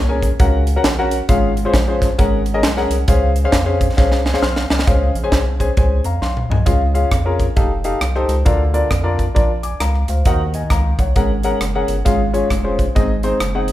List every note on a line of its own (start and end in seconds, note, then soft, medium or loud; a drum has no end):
0.00 0.32 C2 loud
0.00 0.19 A#2 medium
0.09 0.27 C#4 medium
0.09 0.27 G#4 medium
0.09 0.27 A#4 medium
0.09 0.27 G#5 medium
0.23 kick medium
0.23 closed hi-hat medium
0.40 0.78 C#2 medium
0.40 1.08 C#3 medium
0.40 0.61 C#4 medium
0.40 0.61 F#4 medium
0.40 0.61 A#4 medium
0.40 0.61 F#5 medium
0.40 kick loud
0.40 closed hi-hat medium
0.67 closed hi-hat medium
0.76 0.85 C#4 medium
0.76 0.85 F#4 medium
0.76 0.85 A#4 medium
0.76 0.85 F#5 medium
0.84 1.22 A#1 medium
0.84 snare loud
0.84 closed hi-hat medium
0.99 1.17 C#4 medium
0.99 1.17 F#4 medium
0.99 1.17 A#4 medium
0.99 1.17 F#5 medium
1.11 closed hi-hat medium
1.29 1.67 G#1 loud
1.29 1.98 G#2 medium
1.29 1.50 C#4 medium
1.29 1.50 F4 medium
1.29 1.50 G#4 medium
1.29 1.51 F5 loud
1.29 kick loud
1.29 closed hi-hat medium
1.57 closed hi-hat medium
1.65 1.74 C#4 medium
1.65 1.74 F4 medium
1.65 1.74 G#4 medium
1.65 1.74 C5 medium
1.73 2.12 A#1 medium
1.73 kick medium
1.73 snare medium
1.73 closed hi-hat medium
1.88 2.06 C#4 medium
1.88 2.06 F4 medium
1.88 2.06 G#4 medium
1.88 2.06 C5 medium
2.02 kick medium
2.02 snare soft
2.02 closed hi-hat medium
2.18 2.64 G#1 loud
2.18 2.87 G#2 medium
2.18 2.40 C#4 medium
2.18 2.40 G#4 medium
2.18 2.40 A#4 medium
2.18 2.40 F#5 medium
2.18 kick loud
2.18 closed hi-hat medium
2.46 closed hi-hat medium
2.54 2.63 C#4 medium
2.54 2.63 G#4 medium
2.54 2.63 A#4 medium
2.54 2.63 D#5 loud
2.63 2.87 B1 medium
2.63 snare loud
2.63 closed hi-hat medium
2.77 2.96 C#4 medium
2.77 2.96 G#4 medium
2.77 2.96 A#4 medium
2.77 2.96 F#5 medium
2.77 snare soft
2.91 3.05 C2 loud
2.91 closed hi-hat medium
3.08 3.46 C#2 loud
3.08 3.77 C#3 medium
3.08 3.30 C#4 medium
3.08 3.30 G#4 medium
3.08 3.30 C5 medium
3.08 3.30 F5 medium
3.08 kick loud
3.08 closed hi-hat loud
3.36 closed hi-hat medium
3.44 3.53 C#4 medium
3.44 3.53 G#4 medium
3.44 3.53 C5 medium
3.44 3.54 F5 loud
3.52 3.91 F2 medium
3.52 kick medium
3.52 snare loud
3.52 closed hi-hat medium
3.66 3.85 C#4 medium
3.66 3.85 G#4 medium
3.66 3.85 C5 medium
3.66 3.85 F5 medium
3.81 kick medium
3.81 closed hi-hat medium
3.97 4.36 C2 loud
3.97 4.19 C#4 medium
3.97 4.19 G#4 medium
3.97 4.19 C5 medium
3.97 4.19 F5 medium
3.97 kick loud
3.97 snare medium
4.12 snare medium
4.26 4.41 G#5 medium
4.26 snare medium
4.34 4.43 C#4 medium
4.34 4.43 G#4 medium
4.34 4.43 C5 medium
4.34 4.41 F5 medium
4.34 snare medium
4.42 4.66 B1 medium
4.42 4.84 F5 medium
4.42 4.69 C6 medium
4.42 4.69 F6 medium
4.42 snare medium
4.56 snare medium
4.70 4.85 C2 medium
4.70 5.13 D#5 medium
4.70 5.13 G#5 medium
4.70 snare loud
4.79 snare medium
4.87 5.11 C#2 medium
4.87 5.56 C#3 medium
4.87 5.08 C#4 medium
4.87 5.08 G#4 medium
4.87 5.09 C5 medium
4.87 5.09 F5 medium
4.87 kick loud
4.87 closed hi-hat medium
5.15 5.30 A#1 medium
5.15 closed hi-hat medium
5.24 5.40 C#4 medium
5.24 5.40 G#4 medium
5.24 5.40 C5 medium
5.24 5.40 G#5 medium
5.32 5.70 C2 medium
5.32 kick medium
5.32 snare medium
5.32 closed hi-hat medium
5.60 5.69 C#4 medium
5.60 5.69 G#4 medium
5.60 5.69 C5 medium
5.60 5.69 G#5 medium
5.60 kick medium
5.60 closed hi-hat medium
5.77 6.01 C#2 medium
5.77 5.99 C#4 medium
5.77 5.99 G#4 medium
5.77 5.99 C5 medium
5.77 5.99 G#5 medium
5.77 kick loud
5.77 closed hi-hat medium
6.04 6.19 F2 medium
6.04 6.21 F5 medium
6.04 6.21 A#5 medium
6.04 closed hi-hat medium
6.22 6.45 B1 medium
6.22 6.49 F5 medium
6.22 6.48 C6 medium
6.22 snare medium
6.37 mid tom medium
6.49 6.64 C2 medium
6.49 6.93 D#5 soft
6.49 6.93 G#5 medium
6.49 floor tom loud
6.66 7.05 C#2 loud
6.66 7.35 C#3 medium
6.66 6.81 C#4 medium
6.66 6.81 F4 medium
6.66 6.81 G#4 medium
6.66 6.81 F5 medium
6.66 kick loud
6.66 closed hi-hat medium
6.94 7.08 C#4 medium
6.94 7.08 F4 medium
6.94 7.08 G#4 medium
6.94 7.08 F5 medium
6.94 closed hi-hat medium
7.11 7.50 F2 medium
7.11 kick medium
7.11 cross-stick loud
7.11 closed hi-hat medium
7.25 7.44 C#4 medium
7.25 7.44 F4 medium
7.25 7.44 G#4 medium
7.25 7.44 A#4 medium
7.40 kick medium
7.40 cross-stick soft
7.40 closed hi-hat medium
7.56 7.95 F1 loud
7.56 7.71 D#4 medium
7.56 7.71 G4 medium
7.56 7.71 A4 medium
7.56 7.71 F5 medium
7.56 kick loud
7.56 closed hi-hat medium
7.84 7.98 D#4 medium
7.84 7.98 G4 medium
7.84 7.98 A4 medium
7.84 7.98 F5 medium
7.84 closed hi-hat medium
8.01 8.25 C2 medium
8.01 cross-stick loud
8.01 closed hi-hat medium
8.15 8.34 D#4 medium
8.15 8.34 G4 medium
8.15 8.34 A4 medium
8.15 8.34 C5 medium
8.15 cross-stick soft
8.29 8.43 C#2 medium
8.29 closed hi-hat medium
8.45 8.84 D2 loud
8.45 9.15 D3 medium
8.45 8.60 D4 medium
8.45 8.60 F4 medium
8.45 8.60 A#4 medium
8.45 8.60 F5 medium
8.45 kick loud
8.45 closed hi-hat medium
8.73 8.87 D4 medium
8.73 8.87 F4 medium
8.73 8.87 A#4 medium
8.73 8.87 D5 medium
8.73 closed hi-hat medium
8.91 9.29 F2 medium
8.91 kick medium
8.91 cross-stick loud
8.91 closed hi-hat medium
9.03 9.23 D4 medium
9.03 9.23 F4 medium
9.03 9.23 A#4 medium
9.03 9.23 D5 medium
9.19 kick medium
9.19 closed hi-hat medium
9.35 9.74 A#1 medium
9.35 9.50 D4 medium
9.35 9.50 F4 medium
9.35 9.50 A#4 medium
9.35 9.50 D5 medium
9.35 kick loud
9.35 closed hi-hat medium
9.63 9.80 G#5 medium
9.63 9.80 D6 medium
9.63 closed hi-hat medium
9.80 10.04 C#2 medium
9.80 10.07 F5 medium
9.80 10.07 A#5 medium
9.80 cross-stick loud
9.80 closed hi-hat medium
9.95 cross-stick soft
10.08 10.23 D2 medium
10.08 10.52 C5 soft
10.08 10.52 F5 medium
10.08 closed hi-hat medium
10.25 10.64 D#2 loud
10.25 10.95 D#3 medium
10.25 10.41 D#4 medium
10.25 10.41 F#4 medium
10.25 10.41 A#4 medium
10.25 10.41 F#5 medium
10.25 kick loud
10.25 closed hi-hat medium
10.54 10.70 D#5 medium
10.54 10.70 G#5 medium
10.54 closed hi-hat medium
10.70 10.94 C#2 medium
10.70 10.98 F5 medium
10.70 10.98 A#5 medium
10.70 kick medium
10.70 cross-stick loud
10.70 closed hi-hat medium
10.99 11.13 C2 loud
10.99 11.42 C#5 medium
10.99 11.15 F#5 medium
10.99 kick medium
10.99 cross-stick soft
10.99 closed hi-hat medium
11.16 11.54 G#1 loud
11.16 11.85 G#2 medium
11.16 11.30 C#4 medium
11.16 11.30 G#4 medium
11.16 11.30 A#4 medium
11.16 11.30 F#5 medium
11.16 kick loud
11.16 closed hi-hat medium
11.43 11.57 C#4 medium
11.43 11.57 G#4 medium
11.43 11.57 A#4 medium
11.43 11.57 F#5 medium
11.43 closed hi-hat medium
11.61 11.84 F#1 medium
11.61 cross-stick loud
11.61 closed hi-hat medium
11.75 11.94 C#4 medium
11.75 11.94 G#4 medium
11.75 11.94 A#4 medium
11.75 11.94 F#5 medium
11.88 12.03 G1 loud
11.88 closed hi-hat medium
12.05 12.44 G#1 medium
12.05 12.74 G#2 medium
12.05 12.20 C#4 medium
12.05 12.20 F4 medium
12.05 12.20 G#4 medium
12.05 12.20 F5 medium
12.05 kick loud
12.05 closed hi-hat medium
12.33 12.47 C#4 medium
12.33 12.47 F4 medium
12.33 12.47 G#4 medium
12.33 12.47 C#5 medium
12.33 closed hi-hat medium
12.50 12.89 F1 medium
12.50 kick medium
12.50 cross-stick medium
12.50 closed hi-hat medium
12.64 12.83 C#4 medium
12.64 12.83 F4 medium
12.64 12.83 G#4 medium
12.64 12.83 C5 medium
12.79 kick medium
12.79 closed hi-hat medium
12.95 13.34 G#1 medium
12.95 13.64 G#2 medium
12.95 13.10 C4 medium
12.95 13.10 D#4 medium
12.95 13.10 G#4 medium
12.95 13.10 D#5 medium
12.95 kick medium
12.95 closed hi-hat medium
13.23 13.37 C4 medium
13.23 13.37 D#4 medium
13.23 13.37 G#4 medium
13.23 13.37 C5 medium
13.23 closed hi-hat medium
13.40 13.72 F#1 medium
13.40 cross-stick loud
13.40 closed hi-hat medium
13.55 13.72 C4 medium
13.55 13.72 D#4 medium
13.55 13.72 G#4 medium
13.55 13.72 F#5 medium
13.68 closed hi-hat medium